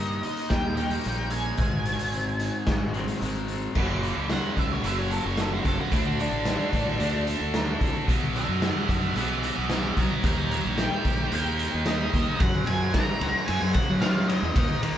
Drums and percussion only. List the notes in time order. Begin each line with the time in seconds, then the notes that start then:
0.23 closed hi-hat
0.37 closed hi-hat
0.50 kick, snare, closed hi-hat
0.77 closed hi-hat
0.90 closed hi-hat
1.04 closed hi-hat
1.30 closed hi-hat
1.57 kick, closed hi-hat
1.85 snare, closed hi-hat
1.99 closed hi-hat
2.12 closed hi-hat
2.39 closed hi-hat
2.67 kick, snare, closed hi-hat
2.94 closed hi-hat
3.08 closed hi-hat
3.22 closed hi-hat
3.48 closed hi-hat
3.75 kick, crash
4.03 closed hi-hat
4.30 snare, closed hi-hat
4.57 kick, closed hi-hat
4.84 closed hi-hat
5.11 closed hi-hat
5.37 snare, closed hi-hat
5.65 kick, closed hi-hat
5.92 kick, closed hi-hat
6.19 closed hi-hat
6.45 snare, closed hi-hat
6.73 kick, closed hi-hat
6.87 snare
7.00 closed hi-hat
7.27 closed hi-hat
7.54 snare, closed hi-hat
7.81 kick, closed hi-hat
8.08 kick, closed hi-hat
8.36 closed hi-hat
8.62 snare, closed hi-hat
8.89 kick, closed hi-hat
9.03 snare
9.16 closed hi-hat
9.43 closed hi-hat
9.70 snare, closed hi-hat
9.97 kick, closed hi-hat
10.23 kick, closed hi-hat
10.51 closed hi-hat
10.78 snare, closed hi-hat
11.05 kick, closed hi-hat
11.32 closed hi-hat
11.59 closed hi-hat
11.86 snare, closed hi-hat
12.14 kick, closed hi-hat
12.40 kick, ride
12.67 ride
12.94 kick, snare, ride
13.21 ride
13.48 ride
13.74 kick, ride
14.02 snare, ride
14.29 snare, ride
14.56 kick, ride
14.83 ride